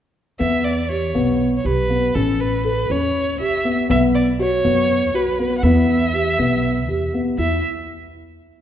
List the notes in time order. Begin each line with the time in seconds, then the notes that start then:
0.39 E2 B3 E5
0.64 D5
0.89 G4 C#5
1.15 B1 B3
1.57 C#5
1.64 B1 G4 B4
1.90 B3
2.15 A1 C#4 A4
2.40 B4
2.65 A4 B4
2.90 E2 C#4 C#5
3.40 A1 G4 E5
3.65 B3
3.89 B1 B3 E5
4.15 D5
4.39 F#4 C#5
4.64 F#2 B3
5.13 B1 F#4 B4
5.39 B3
5.57 F#5
5.62 E2 B3 E5
6.13 G4
6.39 B1 B3
6.88 E2 G4
7.14 B3
7.38 E2 E4 E5